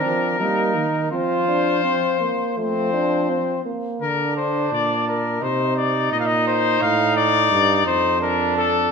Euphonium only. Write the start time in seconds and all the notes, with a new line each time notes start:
Already playing: C4
0.40 A#3
1.12 C4
1.48 D4
1.84 C4
2.20 A#3
2.57 A3
2.93 D4
3.29 C4
3.65 A#3